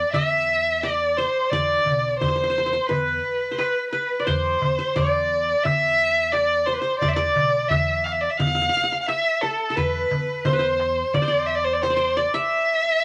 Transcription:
0.00 0.12 D5 medium
0.00 0.43 D5 medium
0.12 1.25 E2 medium
0.12 0.82 E5 medium
0.12 1.06 E5 medium
0.12 darbuka dum medium
0.81 1.18 D5 medium
0.81 1.52 D5 medium
0.81 darbuka tek medium
1.17 1.51 C5 medium
1.17 2.21 C5 medium
1.50 1.87 E2 medium
1.50 2.18 D5 medium
1.50 2.51 D5 medium
1.50 darbuka dum medium
1.86 2.14 B1 medium
1.86 darbuka dum medium
2.04 darbuka ka soft
2.19 2.76 E2 medium
2.19 2.89 C5 medium
2.19 2.28 C5 medium
2.19 darbuka dum medium
2.28 2.35 C5 soft
2.36 2.43 C5 medium
2.44 2.49 C5 medium
2.50 2.58 C5 medium
2.58 2.66 C5 medium
2.66 2.73 C5 medium
2.73 2.95 C5 medium
2.87 3.18 E2 medium
2.87 3.55 B4 medium
2.87 3.57 B4 medium
2.87 darbuka dum medium
3.26 darbuka ka soft
3.51 3.89 B4 medium
3.51 3.65 C5 soft
3.58 3.92 B4 medium
3.58 darbuka tek medium
3.91 4.21 B4 medium
3.91 4.33 B4 medium
4.10 darbuka ka soft
4.20 4.95 D5 medium
4.20 4.26 D5 medium
4.24 4.55 E2 medium
4.24 4.96 C5 medium
4.24 4.78 C5 medium
4.24 darbuka dum medium
4.45 darbuka ka soft
4.62 4.76 E2 medium
4.62 darbuka dum medium
4.79 5.84 C5 medium
4.94 5.51 E2 medium
4.94 5.65 D5 medium
4.94 5.94 D5 medium
4.94 darbuka dum medium
5.63 6.75 E2 medium
5.63 6.34 E5 loud
5.63 6.57 E5 medium
5.63 darbuka dum medium
6.32 6.67 D5 loud
6.32 7.02 D5 medium
6.32 darbuka tek medium
6.66 6.75 C5 medium
6.66 6.81 C5 medium
6.74 6.80 B4 medium
6.79 6.98 C5 medium
6.79 7.87 C5 medium
6.99 7.36 E2 medium
6.99 7.10 D5 medium
6.99 7.16 D5 medium
6.99 darbuka dum medium
7.08 7.15 E5 medium
7.13 7.70 D5 medium
7.13 8.15 D5 medium
7.19 darbuka ka soft
7.36 7.64 B1 medium
7.36 darbuka dum medium
7.69 8.25 E2 medium
7.69 8.05 E5 medium
7.69 8.46 E5 medium
7.69 darbuka dum medium
8.04 8.13 F5 medium
8.04 darbuka tek medium
8.12 8.22 E5 medium
8.21 8.32 D5 medium
8.30 8.39 E5 medium
8.37 8.67 E2 medium
8.37 9.00 F5 loud
8.37 8.46 F5 medium
8.37 darbuka dum medium
8.47 8.55 F5 medium
8.55 8.61 F5 medium
8.62 8.69 F5 medium
8.69 8.76 F5 medium
8.77 8.83 F5 medium
8.84 8.92 F5 medium
8.92 9.14 F5 medium
9.01 9.08 F5 medium
9.06 9.43 E5 loud
9.06 10.00 E5 medium
9.06 darbuka tek medium
9.41 9.78 A4 medium
9.41 9.70 A4 medium
9.70 10.87 A4 medium
9.76 10.04 E2 medium
9.76 10.46 B4 medium
9.76 10.51 B4 medium
9.76 darbuka dum medium
9.94 darbuka ka soft
10.11 10.25 E2 medium
10.11 darbuka dum medium
10.45 11.01 E2 medium
10.45 11.15 C5 medium
10.45 10.59 C5 medium
10.45 darbuka dum medium
10.53 10.65 B4 medium
10.59 11.21 C5 medium
10.80 darbuka tek medium
11.14 12.24 E2 medium
11.14 11.48 D5 medium
11.14 11.27 D5 medium
11.14 darbuka dum medium
11.22 11.83 C5 medium
11.28 11.90 D5 medium
11.46 11.57 E5 medium
11.55 11.66 D5 medium
11.64 11.75 C5 medium
11.73 11.83 D5 medium
11.82 12.18 C5 medium
11.82 11.96 C5 medium
11.82 darbuka tek medium
11.90 12.16 D5 medium
11.97 13.02 C5 medium
12.16 12.35 D5 medium
12.16 13.04 D5 medium
12.34 13.04 E5 medium

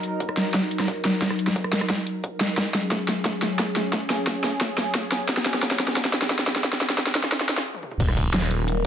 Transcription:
0.00 7.62 F#3 medium
0.00 2.54 D#4 medium
0.00 2.55 A#4 medium
0.00 closed hi-hat medium
0.20 kick loud
0.20 closed hi-hat medium
0.29 cross-stick soft
0.37 snare medium
0.37 closed hi-hat medium
0.54 kick loud
0.54 snare medium
0.54 closed hi-hat medium
0.71 closed hi-hat medium
0.80 cross-stick soft
0.80 snare medium
0.88 kick loud
0.88 closed hi-hat medium
1.05 snare medium
1.05 closed hi-hat medium
1.22 kick loud
1.22 snare medium
1.22 closed hi-hat medium
1.30 cross-stick soft
1.39 closed hi-hat medium
1.47 snare medium
1.56 kick loud
1.56 closed hi-hat medium
1.64 cross-stick soft
1.73 snare medium
1.73 closed hi-hat medium
1.81 cross-stick medium
1.90 kick loud
1.90 snare medium
1.90 closed hi-hat medium
2.07 closed hi-hat medium
2.24 kick loud
2.24 closed hi-hat medium
2.41 snare medium
2.41 closed hi-hat medium
2.58 7.62 C#4 medium
2.58 7.64 G#4 medium
2.58 kick loud
2.58 snare medium
2.58 closed hi-hat medium
2.75 snare medium
2.75 closed hi-hat medium
2.91 kick loud
2.91 snare medium
2.91 closed hi-hat medium
3.08 snare medium
3.08 closed hi-hat medium
3.25 kick loud
3.25 snare medium
3.25 closed hi-hat medium
3.42 snare medium
3.42 closed hi-hat medium
3.59 kick loud
3.59 snare medium
3.59 closed hi-hat medium
3.76 snare medium
3.76 closed hi-hat medium
3.93 kick loud
3.93 snare medium
3.93 closed hi-hat medium
4.10 snare medium
4.10 closed hi-hat medium
4.27 kick loud
4.27 snare medium
4.27 closed hi-hat medium
4.44 snare medium
4.44 closed hi-hat medium
4.61 kick loud
4.61 snare medium
4.61 closed hi-hat medium
4.78 snare medium
4.78 closed hi-hat medium
4.95 kick loud
4.95 snare medium
4.95 closed hi-hat loud
5.12 snare medium
5.12 closed hi-hat medium
5.29 kick loud
5.29 snare medium
5.29 closed hi-hat medium
5.37 snare medium
5.46 snare medium
5.46 closed hi-hat medium
5.54 snare medium
5.63 kick loud
5.63 snare medium
5.63 closed hi-hat loud
5.71 snare medium
5.80 snare loud
5.80 closed hi-hat medium
5.88 snare medium
5.97 kick loud
5.97 snare loud
5.97 closed hi-hat loud
6.05 snare medium
6.14 snare loud
6.14 closed hi-hat medium
6.22 snare medium
6.30 kick loud
6.30 snare loud
6.30 closed hi-hat loud
6.39 snare medium
6.47 snare loud
6.47 closed hi-hat medium
6.56 snare medium
6.64 kick loud
6.64 snare loud
6.64 closed hi-hat medium
6.73 snare medium
6.81 snare loud
6.81 closed hi-hat medium
6.90 snare medium
6.98 kick loud
6.98 snare loud
6.98 closed hi-hat loud
7.07 snare medium
7.15 snare loud
7.15 closed hi-hat medium
7.24 snare medium
7.32 kick loud
7.32 snare loud
7.32 closed hi-hat loud
7.41 snare medium
7.49 snare loud
7.49 closed hi-hat medium
7.58 snare loud
7.75 high tom medium
7.83 mid tom medium
7.92 mid tom medium
8.00 8.33 D#1 loud
8.00 8.87 F#3 medium
8.00 8.87 D#4 medium
8.00 8.87 A#4 medium
8.00 kick loud
8.00 closed hi-hat loud
8.00 crash loud
8.08 cross-stick medium
8.17 kick medium
8.17 closed hi-hat medium
8.34 8.87 D#1 loud
8.34 snare loud
8.34 closed hi-hat loud
8.42 cross-stick soft
8.51 closed hi-hat medium
8.68 closed hi-hat loud

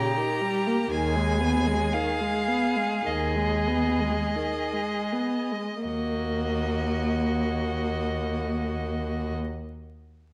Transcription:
0.00 0.19 C#3 soft
0.00 0.93 G4 soft
0.00 0.91 A#5 medium
0.17 0.43 D#3 soft
0.41 0.68 G3 soft
0.67 0.91 A#3 soft
0.91 1.75 D#2 soft
0.91 1.17 D#3 soft
0.91 5.54 G#4 soft
0.91 1.95 G#5 medium
1.16 1.42 G#3 soft
1.40 1.69 B3 soft
1.67 1.96 G#3 soft
1.93 2.22 D#3 soft
1.93 3.07 F5 medium
2.21 2.50 G#3 soft
2.48 2.78 B3 soft
2.76 3.05 G#3 soft
3.05 4.12 D#2 soft
3.05 3.37 D#3 soft
3.05 5.87 D#5 soft
3.36 3.69 G#3 soft
3.68 4.02 B3 soft
4.00 4.37 G#3 soft
4.36 4.75 D#3 soft
4.73 5.14 G#3 soft
5.13 5.53 B3 soft
5.52 5.87 G#3 soft
5.86 9.34 D#2 soft
5.86 9.36 A#3 soft
5.86 9.35 F#4 soft
5.86 9.36 D#5 soft

